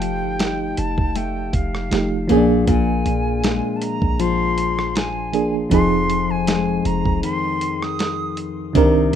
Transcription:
Already playing: F1 F3 A3 D#4 G4 G5
0.02 closed hi-hat
0.22 G1
0.39 D#4, snare, closed hi-hat
0.77 F1 A5, closed hi-hat
0.98 F1, kick
1.16 A3 G5, closed hi-hat
1.53 F1 F5, kick, closed hi-hat
1.75 cross-stick
1.90 F1 F3 A3 D#4 G4, snare, closed hi-hat
2.28 A#1 A#2 F3 A#3 C#4, closed hi-hat
2.32 G#4
2.37 D4
2.67 A#1 A#2 G#5, kick, closed hi-hat
3.06 A#1, closed hi-hat
3.43 G#3, snare, closed hi-hat
3.76 A5
3.82 A#5, closed hi-hat
4.02 A#1, kick
4.19 F3 C6, closed hi-hat
4.58 closed hi-hat
4.79 cross-stick
4.96 G#5, snare, closed hi-hat
5.33 F3 A#3 D4 G#4, closed hi-hat
5.70 F1 F2 F3 C4 D#4 C6, kick, closed hi-hat
5.74 G#4
6.10 closed hi-hat
6.30 G#5
6.47 G#3, snare, closed hi-hat
6.85 F1 A#5, closed hi-hat
7.05 F1, kick
7.23 D#3 C6, closed hi-hat
7.61 closed hi-hat
7.82 D#6, cross-stick
7.99 snare, closed hi-hat
8.37 closed hi-hat
8.73 C2 C3 D3 C4 D4, kick, closed hi-hat
8.77 D#3 A#4

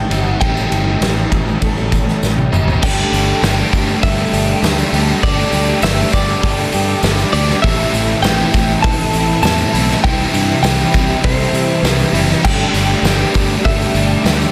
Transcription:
Already playing: A2 E3 G3 C#4 E4 G4 C#5 E5 G5 A5
0.10 G1 A2 E3 G3 C#4 E4, ride, tambourine
0.21 F#5
0.27 tambourine
0.40 A1 A2 E3 G3 C#4 E4 A4 G5, kick, ride
0.57 tambourine
0.71 G1, ride, tambourine
1.01 A1 B4, snare, ride, tambourine
1.17 tambourine
1.31 A1, kick, ride, tambourine
1.48 tambourine
1.62 A1 A4, kick, ride, tambourine
1.78 tambourine
1.92 kick, ride, tambourine
2.08 snare
2.22 A1 G4, snare, tambourine
2.38 high tom, tambourine
2.52 G1 A2 E3 G3 C#4 E4, mid tom, tambourine
2.68 floor tom, tambourine
2.81 G1 G3 A3 D4 G4 A4 D5 G5 A5, kick, crash, tambourine
3.12 G1 A3 D4 G4, open hi-hat, tambourine
3.42 G1 G3 A3 D4 G4 B4, snare, open hi-hat, tambourine
3.59 tambourine
3.72 G1 A3 D4 G4, kick, open hi-hat, tambourine
3.89 tambourine
4.01 G1 G3 A3 D4 G4 A4 E5, kick, open hi-hat, tambourine
4.20 tambourine
4.32 G1 A3 D4 G4, open hi-hat, tambourine
4.49 tambourine
4.62 D2 G3 A3 D4 G4, snare, open hi-hat, tambourine
4.79 tambourine
4.92 D2 A3 D4 G4, open hi-hat
5.09 tambourine
5.23 G1 G3 A3 D4 G4 A4 D5 G5, kick, open hi-hat, tambourine
5.38 tambourine
5.52 D2 A3 D4 G4, open hi-hat, tambourine
5.81 G1 G3 A3 D4 G4 B4 E5, snare, open hi-hat, tambourine
5.98 tambourine
6.12 G1 A3 D4 G4 D5, kick, open hi-hat, tambourine
6.28 tambourine
6.41 G1 G3 A3 D4 G4 A4, kick, open hi-hat, tambourine
6.57 tambourine
6.72 G2 A3 D4 G4, open hi-hat, tambourine
6.88 tambourine
7.02 G1 G3 A3 D4 G4, snare, open hi-hat, tambourine
7.19 tambourine
7.32 D2 A3 D4 G4 D5, open hi-hat
7.49 snare, tambourine
7.62 A1 A2 E3 A3 C4 E4 A4 E5 A5, kick, open hi-hat, tambourine
7.79 tambourine
7.92 A1 A3 C4 E4, open hi-hat, tambourine
8.22 A1 E3 A3 C4 E4 B4 G5, snare, open hi-hat, tambourine
8.39 tambourine
8.52 A1 A3 C4 E4, kick, open hi-hat, tambourine
8.68 tambourine
8.82 A1 A2 E3 A3 C4 E4 A4 A5, kick, open hi-hat, tambourine
8.97 tambourine
9.13 A1 A3 C4 E4, open hi-hat, tambourine
9.28 tambourine
9.42 E2 E3 A3 C4 E4 G4 A5, snare, open hi-hat, tambourine
9.58 tambourine
9.73 B1 A3 C4 E4, open hi-hat
9.91 snare
10.02 C2 C3 E3 G3 C4 E4 G4 D5 E5 G5, kick, open hi-hat, tambourine
10.20 tambourine
10.33 G2 G3 C4 E4, open hi-hat, tambourine
10.49 tambourine
10.63 C2 E3 G3 C4 E4 B4 G5, snare, open hi-hat, tambourine
10.79 tambourine
10.92 C2 G3 C4 E4, kick, open hi-hat, tambourine
11.09 tambourine
11.23 C2 C3 E3 G3 C4 E4 A4 C5, kick, open hi-hat, tambourine
11.39 tambourine
11.52 C3 G3 C4 E4, open hi-hat, tambourine
11.69 tambourine
11.83 C2 E3 G3 C4 E4 G4 B4, snare, open hi-hat, tambourine
11.99 tambourine
12.12 F#1 G3 C4 E4, open hi-hat, tambourine
12.29 snare, tambourine
12.43 G1 G3 A3 D4 G4 A4 G5 D6, kick, crash
12.59 tambourine
12.73 G1 A3 D4 G4, open hi-hat, tambourine
13.02 G1 G3 A3 D4 B4, snare, open hi-hat, tambourine
13.07 G4
13.20 tambourine
13.34 G1 A3 D4 G4, kick, open hi-hat, tambourine
13.49 tambourine
13.64 G1 G3 A3 D4 G4 A4 E5, kick, open hi-hat, tambourine
13.79 tambourine
13.94 G1 A3 D4 G4, open hi-hat, tambourine
14.11 tambourine
14.24 D2 G3 A3 D4 G4, snare, open hi-hat, tambourine
14.42 tambourine

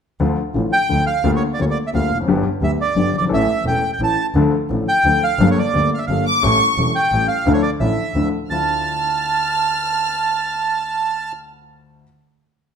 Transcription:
0.20 D2 D3 F3 A3 F4
0.54 A1 A2 D3 F3 A3 F4
0.73 G5
0.89 D2 D3 F3 A3 F4
1.07 F5
1.24 D2 D3 G3 A#3 F4
1.36 C#5
1.54 D5
1.59 D2 D3 G3 A#3 F4 C#5
1.71 D5
1.87 E5
1.93 D2 D3 G3 A#3 F4 F5
2.10 F1
2.15 E2
2.20 F2 F#2
2.27 G1 G2 D3 G3 B3 G4
2.62 D2 D3 G3 B3 G4 E5
2.81 D5
2.96 G1 G2 D3 G3 B3 G4
3.13 G1
3.18 F#1 D5
3.22 G1
3.26 G#1 A2 E3 A3 A4
3.30 A1 C#4 E5
3.65 E1 E2 E3 A3 C#4 A4 G5
3.93 G5
4.00 A1 A2 E3 A3 C#4 A4 A5
4.35 D2 D3 F3 A3 D4 A4
4.70 A1 A2 F3 A3 D4 A4
4.88 G5
5.04 D2 D3 F3 A3 D4 A4
5.24 F5
5.39 G1 G2 G3 A#3 D4 A4
5.51 C#5
5.59 D5
5.74 D2 D3 G3 A#3 D4 A4
5.94 F5
5.98 E5
6.07 G1 G2 G3 A#3 D4 A4 F5
6.26 D6
6.42 A1 A2 G3 C#4 E4 A4 C#6
6.77 E1 E2 G3 C#4 E4 A4
6.95 G5
7.12 A1 A2 G3 C#4 E4 A4
7.28 F5
7.46 D2 D3 F3 D4 E4 A4
7.53 C#5
7.62 D5
7.80 A1 A2 F3 D4 E4 A4 E5
8.14 D2 D3 F3 D4 E4 A4
8.50 D2 D4 E4 F4 A5 F6

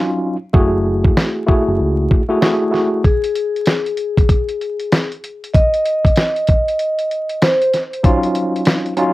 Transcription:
Already playing: F#3 C#4 D#4 F4
0.53 F#1 A3 E4 F#4 G#4, kick
1.04 kick
1.17 snare
1.46 A3 E4 F#4 G#4, kick
1.68 F#1
1.80 C#2
2.11 kick
2.29 A3 E4 F#4 G#4
2.41 A3 E4 F#4 G#4, snare
2.71 A3 E4 F#4 G#4, snare
3.04 G#4, kick, closed hi-hat
3.24 closed hi-hat
3.35 closed hi-hat
3.56 closed hi-hat
3.66 snare, closed hi-hat
3.86 closed hi-hat
3.97 closed hi-hat
4.17 kick, closed hi-hat
4.29 kick, closed hi-hat
4.49 closed hi-hat
4.61 closed hi-hat
4.79 closed hi-hat
4.92 snare, closed hi-hat
5.12 closed hi-hat
5.24 closed hi-hat
5.44 closed hi-hat
5.53 D#5, kick, closed hi-hat
5.74 closed hi-hat
5.85 closed hi-hat
6.05 kick, closed hi-hat
6.16 snare, closed hi-hat
6.36 closed hi-hat
6.47 kick, closed hi-hat
6.68 closed hi-hat
6.79 closed hi-hat
6.99 closed hi-hat
7.11 closed hi-hat
7.29 closed hi-hat
7.42 C5, snare, closed hi-hat
7.62 closed hi-hat
7.74 snare, closed hi-hat
7.93 closed hi-hat
8.03 F#3 C#4 D#4 F4, kick, closed hi-hat
8.23 closed hi-hat
8.35 closed hi-hat
8.56 closed hi-hat
8.66 snare, closed hi-hat
8.86 closed hi-hat
8.97 F#3 C#4 D#4 F4, closed hi-hat

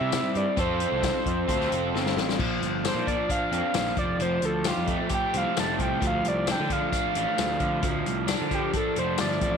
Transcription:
Already playing: G3 C4 E4 G4 E5
0.01 C3
0.12 snare, closed hi-hat, tambourine
0.35 G2 D5, closed hi-hat
0.56 F2 C4 F4 A4 C5, kick, closed hi-hat
0.80 closed hi-hat
0.92 C2
1.03 kick, snare, closed hi-hat, tambourine
1.26 F2, kick, closed hi-hat
1.48 D2 C4 F4 A4, kick, closed hi-hat
1.60 snare
1.72 F1, closed hi-hat
1.94 G1, snare
2.06 snare
2.17 A1, snare
2.29 snare
2.39 A#1 F3, kick, crash
2.61 G1, closed hi-hat
2.84 D4 C5, snare, closed hi-hat, tambourine
2.94 A#2
3.06 F3 D5, kick, closed hi-hat
3.29 D4 F5, kick, closed hi-hat
3.52 F2 C4, closed hi-hat
3.74 A#1 F3, snare, closed hi-hat, tambourine
3.86 snare
3.97 F1 F3 D5, kick, closed hi-hat
4.19 F1 F3 C5, closed hi-hat
4.42 D2 A4, closed hi-hat
4.64 F4 G4, snare, closed hi-hat, tambourine
4.77 F2
4.87 A3, kick, closed hi-hat
5.09 G4, kick, closed hi-hat
5.14 G5
5.34 C2 C4 F5, closed hi-hat
5.56 F1 A3 A5, snare, closed hi-hat, tambourine
5.79 C2 F3 G5, kick, closed hi-hat
6.01 D2 F3, kick, closed hi-hat
6.07 F5
6.25 C2 D5, closed hi-hat
6.47 D4, snare, closed hi-hat, tambourine
6.51 G5
6.60 D3
6.69 F3 F5, kick, closed hi-hat
6.92 D4, kick, closed hi-hat
7.15 A1 A3, closed hi-hat
7.38 D2 F3, snare, closed hi-hat, tambourine
7.60 D3 F3, kick, closed hi-hat
7.83 D2 F3, kick, closed hi-hat
8.06 C2, closed hi-hat
8.27 D4, snare, closed hi-hat, tambourine
8.41 D3
8.50 F3 G4, kick, closed hi-hat
8.73 D4 A4, kick, closed hi-hat
8.95 F1 A3 C5, closed hi-hat
9.18 G1 F3 D5, snare, closed hi-hat, tambourine
9.31 snare
9.41 A1 F3 D5, kick, closed hi-hat

